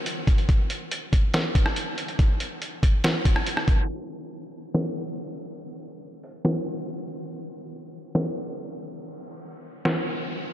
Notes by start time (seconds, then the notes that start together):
0.06 closed hi-hat
0.27 kick, closed hi-hat
0.38 closed hi-hat
0.49 kick, closed hi-hat
0.70 closed hi-hat
0.91 closed hi-hat
1.13 kick, closed hi-hat
1.34 snare, closed hi-hat
1.55 kick, closed hi-hat
1.66 cross-stick
1.76 closed hi-hat
1.98 closed hi-hat
2.08 closed hi-hat
2.19 kick, closed hi-hat
2.40 closed hi-hat
2.62 closed hi-hat
2.83 kick, closed hi-hat
3.04 snare, closed hi-hat
3.25 kick, closed hi-hat
3.36 cross-stick
3.47 closed hi-hat
3.57 cross-stick
3.68 kick, closed hi-hat
4.74 snare
6.23 open hi-hat
6.45 snare
8.15 snare
9.85 snare